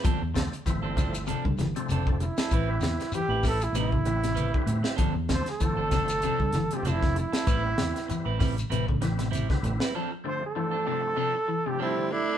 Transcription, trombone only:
X:1
M:4/4
L:1/16
Q:"Swing 16ths" 1/4=97
K:Gmix
V:1 name="Trombone"
z12 z2 E2- | E4 G2 A E E8 | z2 c A8 G E2 E2- | E6 z8 z2 |
z2 c A8 G E2 E2 |]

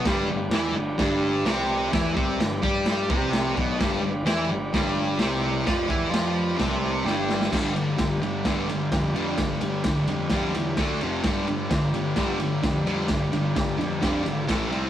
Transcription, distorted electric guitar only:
X:1
M:4/4
L:1/8
Q:1/4=129
K:Gmix
V:1 name="Distorted electric guitar" clef=bass
[G,,G,] G,, [E,E] G,, [G,,G,]2 [C,C]2 | [E,E] [C,C] G,, [G,G]2 [C,C]2 [B,,B,] | [G,,G,] G,, [E,E] G,, [G,,G,]2 [C,C]2 | [F,F] [E,E] [F,F]2 [C,C]2 [G,,G,]2 |
[G,,D,G,] [G,,D,] [G,,D,] [G,,D,] [G,,D,G,] [G,,D,] [G,,D,] [G,,D,G,] | [G,,D,] [G,,D,] [G,,D,] [G,,D,] [G,,D,G,] [G,,D,] [D,A,D] [F,,C,F,] | [G,,D,G,] [G,,D,] [G,,D,] [G,,D,] [G,,D,G,] [G,,D,] [G,,D,] [G,,D,G,] | [G,,D,] [G,,D,] [G,,D,] [G,,D,] [G,,D,G,] [G,,D,] [A,,E,A,] [C,G,C] |]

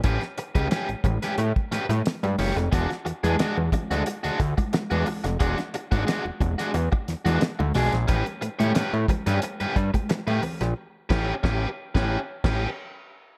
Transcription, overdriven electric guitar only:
X:1
M:4/4
L:1/16
Q:1/4=90
K:A
V:1 name="Overdriven electric guitar"
[C=GB] z2 [CGB] [CGB] z2 [CGB] z2 [CGB] z3 [CGc] z | [G,DF] z2 [G,DG] [G,DF] z2 [G,DF] z [G,DF] z3 [G,DF] z2 | [G,DF] z2 [G,DF] [G,DF] z2 [G,DF] z3 [G,DF] z2 [G,DG] z | [C=GB] z2 [CGc] [CGB] z2 [CGB] z [CGB] z3 [CGB] z2 |
z2 [C=GB]2 [CGB]2 z [CGB]2 z [CGB]2 z4 |]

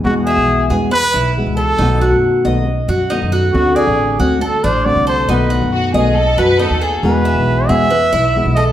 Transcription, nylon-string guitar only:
X:1
M:4/4
L:1/8
Q:1/4=137
K:E
V:1 name="Nylon-string guitar"
[B,,E,G,B,F]3 [E,G,B,F] z2 [E,G,B,F]2 | [B,,D,A,B,F]3 [D,A,B,F] z2 [D,A,B,F]2 | [=D,A,=CF]3 [A,CF] z2 [D,A,CF]2 | [B,,D,A,B,F]3 [D,A,B,F] z2 [D,A,B,F]2 |
[B,,E,G,B,F]3 [E,G,B,F] z2 [E,G,B,F]2 |]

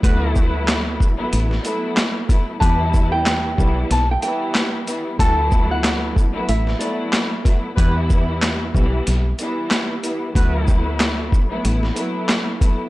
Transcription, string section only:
X:1
M:4/4
L:1/16
Q:"Swing 16ths" 1/4=93
K:Dmix
V:1 name="String section"
[F,A,B,E]6 z [F,A,B,E]2 z [F,A,B,E]4 [F,A,B,E]2 | [E,G,B,E]6 [E,G,B,E]3 z [E,G,B,E]4 [E,G,B,E]2 | [F,A,B,E]6 z [F,A,B,E]2 z [F,A,B,E]4 [F,A,B,E]2 | [E,G,B,E]6 [E,G,B,E]3 z [E,G,B,E]4 [E,G,B,E]2 |
[F,A,B,E]6 z [F,A,B,E]2 z [F,A,B,E]4 [F,A,B,E]2 |]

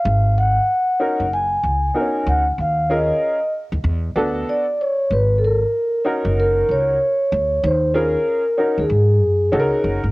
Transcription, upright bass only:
X:1
M:4/4
L:1/16
Q:"Swing 16ths" 1/4=95
K:G#dor
V:1 name="Upright bass" clef=bass
G,,,4 z3 F,,,3 C,,2 z2 =D,,2 | D,,4 z3 D,, =E,,2 =D,,2 z4 | G,,,4 z3 F,,,3 C,,2 z2 =D,,2 | D,,4 z3 D,, G,,2 F,,2 C,, z F,,, =G,,, |]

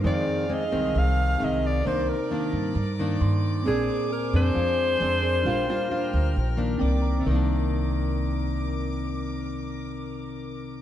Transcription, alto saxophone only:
X:1
M:4/4
L:1/8
Q:1/4=133
K:Cm
V:1 name="Alto saxophone"
d2 e2 f2 e d | c B4 z3 | A2 B c4- c- | c6 z2 |
z8 | z8 |]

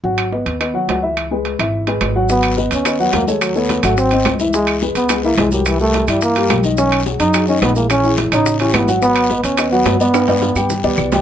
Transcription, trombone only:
X:1
M:4/4
L:1/8
Q:1/4=214
K:G#m
V:1 name="Trombone"
z8 | z8 | B,2 z C2 B, A, G, | F, B,2 =A, ^B,3 z |
G,2 z B,2 A, G, F, | E, =A,2 =G, ^A,3 z | C2 z D2 C B, A, | C2 z D2 C B, z |
B,3 C2 B,2 B,- | B,4- B, =G,2 G, |]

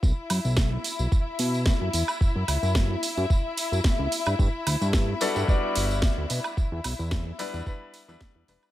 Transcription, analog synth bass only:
X:1
M:4/4
L:1/16
Q:"Swing 16ths" 1/4=110
K:Bm
V:1 name="Analog synth bass" clef=bass
B,,, z F,, B,,,2 z2 B,,, z2 B,,2 z F,, E,, z | F,, F,, C,, F,,2 z2 F,, z3 F,, z C,, z G,, | G,, z D,, G,,2 z2 G,, z2 G,,,2 z D,, B,, z | E,, E,, B,,, E,,2 z2 E,, z3 E,, z E,, E,,, z |]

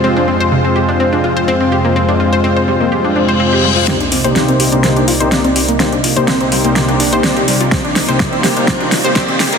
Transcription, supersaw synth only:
X:1
M:4/4
L:1/16
Q:1/4=125
K:Cm
V:1 name="Supersaw synth"
[A,CFc]16- | [A,CFc]16 | [C,B,EGc] z2 [C,B,EGc]4 [C,B,EGc]3 z [C,B,EGc] [C,B,EGd] z3 | [C,B,EGc] z2 [C,B,EGc]4 [C,B,EGc]3 z [C,B,EGc] [C,B,EGd] z3 |
[C,B,EGc] z2 [C,B,EGc]4 [C,B,EGc]3 z [C,B,EGc] [EGd] z3 |]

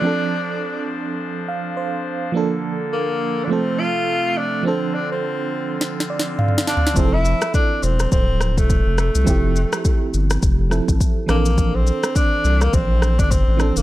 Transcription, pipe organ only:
X:1
M:4/4
L:1/8
Q:"Swing 16ths" 1/4=104
K:F
V:1 name="Pipe organ"
c8 | A4 F4- | F8 | z8 |
z8 | z8 |]
V:2 name="Pipe organ" clef=bass
[F,D]8 | [D,B,]4 [C,A,]4 | [D,C]8 | z8 |
z8 | z8 |]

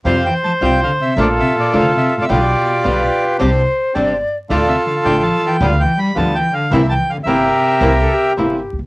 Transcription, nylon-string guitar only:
X:1
M:4/4
L:1/8
Q:1/4=108
K:F
V:1 name="Nylon-string guitar"
[F,G,CF] z [F,G,CF] z [F,A,DF] z [F,A,DF] z | [=B,,D,G,=B,F] z [B,,D,G,B,F] z [C,G,CDG] z [C,G,CDG] z | [D,A,DF] z [D,A,DF] z [D,G,=B,F] z [D,G,B,F] z | [C,E,B,CE] z [C,E,B,CE] z [C,E,B,CE] z [C,E,B,CE] z |]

